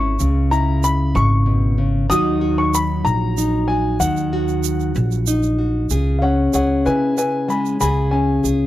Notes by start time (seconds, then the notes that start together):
Already playing: G#1 G#3 C#4 E4 G#4 C#6
0.19 C#2 C#3, shaker
0.51 E4 A#5, shaker
0.84 B5, shaker
1.15 G#1 A#2 C#6, shaker
1.46 B2
1.78 C#3
2.10 D#2 D#3 F#3 D#4 F#4 D#6, shaker
2.41 F#4
2.58 C#6
2.74 B5, shaker
3.05 A#1 A#5, muted nylon-string guitar stroke, shaker
3.38 D#4, shaker
3.68 F#4 G#5
4.00 D#2 D#3 F#5, shaker
4.17 shaker
4.33 F#4
4.48 shaker
4.64 shaker
4.80 shaker
4.95 A#1, muted nylon-string guitar stroke, shaker
5.12 shaker
5.27 D#4, shaker
5.43 shaker
5.58 F#4
5.90 C#2 C#3 G#4, shaker
6.19 C#4 C#5 F5
6.23 F#5
6.53 C#2 G#4 C#5 F#5, shaker
6.86 C#3 E4 B4 G#5, shaker
7.17 C#4 B4 G#5, shaker
7.48 G#3 G#5 B5, shaker
7.66 shaker
7.80 C#2 C#3 G#4 G#5 B5, shaker
8.11 C#4 G#5
8.44 C#2 G#4, shaker